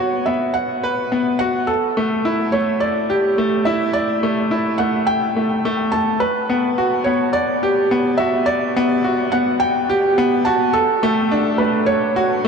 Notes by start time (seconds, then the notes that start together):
Already playing: B3 B4 C#5
0.00 F#4
0.26 B3 E5
0.54 F#5
0.83 B4
1.12 B3
1.39 F#4 F#5
1.67 A4
1.97 A3
2.25 E4
2.52 A3 C#5
2.80 D5
3.10 G4
3.38 A3
3.65 E4 E5
3.93 D5
4.23 A3
4.51 E4
4.78 A3 F#5
5.07 G5
5.36 A3
5.65 A3
5.92 A3 A5
6.20 B4
6.50 B3
6.78 F#4
7.04 B3 C#5
7.33 D5
7.63 G4
7.91 B3
8.18 F#4 E5
8.46 D5
8.77 B3
9.05 F#4
9.32 B3 F#5
9.60 G5
9.90 G4
10.18 B3
10.45 F#4 A5
10.73 A4
11.03 A3
11.31 D4
11.58 A3 B4
11.86 C#5
12.16 F#4
12.45 A3